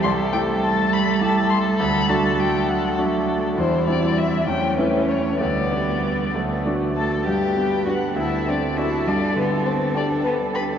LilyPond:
<<
  \new Staff \with { instrumentName = "Violin" } { \time 6/8 \key g \major \tempo 4. = 67 c'''8 g''8 a''8 b''8 a''8 c'''8 | b''8 a''8 g''8 fis''8 r4 | c''8 d''8 e''8 g''8 b'8 cis''8 | d''4. r4 a''8 |
g''4 fis''8 e''8 d''8 e''8 | d''8 b'8 c''8 d''8 b'8 b''8 | }
  \new Staff \with { instrumentName = "Violin" } { \time 6/8 \key g \major a'2.~ | a'2. | e'4. cis'4. | b4. a4 a'8 |
g'4 fis'8 e'8 d'8 e'8 | d'8 b8 c'8 d'8 b8 b'8 | }
  \new Staff \with { instrumentName = "Grand piano" } { \time 6/8 \key g \major c,8 <a e' g'>4. <a e' g'>4 | d,8 <a d' fis'>4. <a d' fis'>4 | e,8 <g c' e'>4 e,8 <a cis' e'>4 | d,8 <b d' g'>4 d,8 <a d' fis'>4 |
g,8 b8 <d' g'>8 d,8 c'8 <d' fis'>8 | g,8 d8 b8 g'8 b'8 g'8 | }
  \new Staff \with { instrumentName = "Cello" } { \clef bass \time 6/8 \key g \major g2.~ | g4. fis4. | g4. a4. | g4. fis8 g8 a8 |
b'4. a'4.~ | a'2. | }
>>